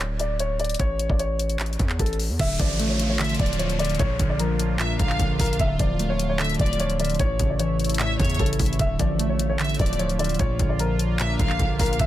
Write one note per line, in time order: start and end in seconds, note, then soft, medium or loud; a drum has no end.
0.00 0.76 D1 loud
0.20 0.35 D5 medium
0.20 closed hi-hat medium
0.40 0.55 C#5 medium
0.40 closed hi-hat medium
0.60 0.75 D5 medium
0.60 closed hi-hat soft
0.65 closed hi-hat medium
0.70 closed hi-hat medium
0.74 closed hi-hat medium
0.79 1.08 A1 loud
0.79 1.08 C#5 loud
0.79 kick loud
0.79 closed hi-hat medium
0.99 closed hi-hat medium
1.10 1.77 A1 loud
1.10 1.17 D5 medium
1.10 kick loud
1.19 1.95 C#5 medium
1.19 closed hi-hat medium
1.39 closed hi-hat medium
1.50 closed hi-hat soft
1.59 clap loud
1.59 closed hi-hat medium
1.66 closed hi-hat medium
1.73 closed hi-hat medium
1.79 1.99 E2 loud
1.79 kick loud
1.79 closed hi-hat medium
1.90 clap medium
1.99 2.31 A1 loud
1.99 2.15 A4 medium
1.99 kick medium
1.99 closed hi-hat medium
2.06 closed hi-hat medium
2.13 closed hi-hat soft
2.19 open hi-hat medium
2.29 2.39 E2 loud
2.39 2.59 D1 loud
2.39 3.98 D3 medium
2.39 3.18 D3 medium
2.39 3.98 A3 medium
2.39 3.98 F4 medium
2.39 2.55 E5 loud
2.39 kick loud
2.39 closed hi-hat medium
2.39 crash loud
2.39 downlifter medium
2.59 3.36 A1 loud
2.59 3.38 F3 medium
2.59 2.88 D5 medium
2.59 kick loud
2.59 closed hi-hat medium
2.79 3.79 A3 medium
2.79 closed hi-hat medium
2.89 3.05 C#5 medium
2.99 closed hi-hat medium
3.09 3.17 C#5 medium
3.19 3.78 D3 medium
3.19 3.39 E5 medium
3.19 clap loud
3.19 closed hi-hat medium
3.24 closed hi-hat medium
3.29 closed hi-hat medium
3.35 closed hi-hat medium
3.39 3.97 D1 loud
3.39 3.58 F3 medium
3.39 3.59 D5 medium
3.39 3.55 D5 medium
3.39 kick loud
3.39 closed hi-hat medium
3.46 closed hi-hat medium
3.53 closed hi-hat medium
3.59 3.99 F3 medium
3.59 3.75 C#5 medium
3.59 closed hi-hat medium
3.69 closed hi-hat medium
3.79 4.00 D3 medium
3.79 3.94 D5 medium
3.79 closed hi-hat medium
3.85 closed hi-hat medium
3.90 closed hi-hat medium
3.95 closed hi-hat soft
3.99 4.19 A#1 loud
3.99 4.79 A#2 loud
3.99 5.58 A#3 medium
3.99 5.58 D4 medium
3.99 7.16 F4 medium
3.99 4.28 C#5 loud
3.99 kick loud
3.99 closed hi-hat medium
4.19 4.96 A#1 loud
4.19 4.99 D3 medium
4.19 kick loud
4.19 closed hi-hat medium
4.29 4.37 D5 medium
4.39 5.40 F3 medium
4.39 5.35 A#4 medium
4.39 closed hi-hat medium
4.59 closed hi-hat medium
4.79 5.38 A#2 medium
4.79 4.99 E5 loud
4.79 clap loud
4.79 closed hi-hat medium
4.99 5.19 A#1 loud
4.99 5.18 D3 medium
4.99 5.37 F5 medium
4.99 kick loud
4.99 closed hi-hat medium
5.10 clap medium
5.19 5.39 A#1 loud
5.19 5.58 D3 medium
5.19 kick medium
5.19 closed hi-hat medium
5.39 5.59 A#1 loud
5.39 5.59 A#2 medium
5.39 5.55 A#4 medium
5.39 5.58 F5 medium
5.39 kick medium
5.39 closed hi-hat medium
5.39 open hi-hat medium
5.46 closed hi-hat medium
5.53 closed hi-hat medium
5.59 5.79 D1 loud
5.59 6.38 D3 loud
5.59 7.18 D3 medium
5.59 7.18 A3 medium
5.59 5.75 E5 loud
5.59 kick loud
5.59 closed hi-hat medium
5.79 6.56 D1 loud
5.79 6.58 F3 medium
5.79 6.08 D5 medium
5.79 kick loud
5.79 closed hi-hat medium
5.99 6.99 A3 medium
5.99 closed hi-hat medium
6.10 6.25 C#5 medium
6.19 closed hi-hat medium
6.29 6.37 C#5 medium
6.39 6.99 D3 medium
6.39 6.59 E5 medium
6.39 clap loud
6.39 closed hi-hat medium
6.44 closed hi-hat medium
6.50 closed hi-hat medium
6.54 closed hi-hat medium
6.59 7.17 D1 loud
6.59 6.78 F3 medium
6.59 6.78 D5 medium
6.59 6.75 D5 medium
6.59 kick loud
6.59 closed hi-hat medium
6.66 closed hi-hat medium
6.73 closed hi-hat medium
6.80 7.20 F3 medium
6.80 6.95 C#5 medium
6.80 closed hi-hat medium
6.90 closed hi-hat medium
7.00 7.20 D3 medium
7.00 7.15 D5 medium
7.00 closed hi-hat medium
7.05 closed hi-hat medium
7.10 closed hi-hat medium
7.15 closed hi-hat soft
7.19 7.39 A1 loud
7.19 7.98 A2 loud
7.19 8.78 A3 medium
7.19 8.78 E4 medium
7.19 8.78 C#5 medium
7.19 7.48 C#5 loud
7.19 kick loud
7.19 closed hi-hat medium
7.39 8.16 A1 loud
7.39 8.18 C#3 medium
7.39 kick loud
7.39 closed hi-hat medium
7.50 7.57 D5 medium
7.59 8.60 E3 medium
7.59 8.35 C#5 medium
7.59 closed hi-hat medium
7.80 closed hi-hat soft
7.84 closed hi-hat medium
7.89 closed hi-hat medium
7.94 closed hi-hat medium
7.99 8.58 A2 medium
7.99 8.19 E5 medium
7.99 clap loud
7.99 closed hi-hat medium
8.19 8.39 E2 loud
8.19 8.38 C#3 medium
8.19 8.38 C#5 medium
8.19 kick loud
8.19 closed hi-hat medium
8.25 closed hi-hat medium
8.30 closed hi-hat medium
8.35 closed hi-hat medium
8.39 8.59 A1 loud
8.39 8.80 C#3 medium
8.39 8.55 A4 medium
8.39 kick medium
8.39 closed hi-hat medium
8.46 closed hi-hat medium
8.53 closed hi-hat medium
8.59 8.79 A1 loud
8.59 8.79 A2 medium
8.59 kick medium
8.59 closed hi-hat medium
8.59 open hi-hat medium
8.66 closed hi-hat medium
8.73 closed hi-hat medium
8.79 8.99 D1 loud
8.79 10.38 D3 medium
8.79 9.58 D3 loud
8.79 10.38 A3 medium
8.79 12.07 F4 medium
8.79 8.95 E5 loud
8.79 kick loud
8.79 closed hi-hat medium
8.99 9.76 A1 loud
8.99 9.78 F3 medium
8.99 9.28 D5 medium
8.99 kick loud
8.99 closed hi-hat medium
9.19 10.19 A3 medium
9.19 closed hi-hat medium
9.29 9.45 C#5 medium
9.39 closed hi-hat medium
9.49 9.57 C#5 medium
9.59 10.19 D3 medium
9.59 9.79 E5 medium
9.59 clap loud
9.59 closed hi-hat medium
9.64 closed hi-hat medium
9.69 closed hi-hat medium
9.74 closed hi-hat medium
9.79 10.37 D1 loud
9.79 9.98 F3 medium
9.79 9.98 D5 medium
9.79 9.95 D5 medium
9.79 kick loud
9.79 closed hi-hat medium
9.86 closed hi-hat medium
9.93 closed hi-hat medium
9.99 10.39 F3 medium
9.99 10.15 C#5 medium
9.99 closed hi-hat medium
10.09 closed hi-hat medium
10.19 10.40 D3 medium
10.19 10.35 D5 medium
10.19 closed hi-hat medium
10.24 closed hi-hat medium
10.29 closed hi-hat medium
10.34 closed hi-hat soft
10.39 10.59 A#1 loud
10.39 11.19 A#2 loud
10.39 11.98 A#3 medium
10.39 11.98 D4 medium
10.39 10.68 C#5 loud
10.39 kick loud
10.39 closed hi-hat medium
10.59 11.36 A#1 loud
10.59 11.39 D3 medium
10.59 kick loud
10.59 closed hi-hat medium
10.69 10.77 D5 medium
10.79 11.80 F3 medium
10.79 11.75 A#4 medium
10.79 closed hi-hat medium
10.99 closed hi-hat medium
11.19 11.78 A#2 medium
11.19 11.39 E5 loud
11.19 clap loud
11.19 closed hi-hat medium
11.39 11.59 A#1 loud
11.39 11.58 D3 medium
11.39 11.77 F5 medium
11.39 kick loud
11.39 closed hi-hat medium
11.50 clap medium
11.59 11.79 A#1 loud
11.59 11.98 D3 medium
11.59 kick medium
11.59 closed hi-hat medium
11.79 11.99 A#1 loud
11.79 11.99 A#2 medium
11.79 11.95 A#4 medium
11.79 11.98 F5 medium
11.79 kick medium
11.79 closed hi-hat medium
11.79 open hi-hat medium
11.86 closed hi-hat medium
11.93 closed hi-hat medium
11.99 12.07 D1 loud
11.99 12.07 D3 loud
11.99 12.07 D3 medium
11.99 12.07 A3 medium
11.99 12.07 E5 loud
11.99 kick loud
11.99 closed hi-hat medium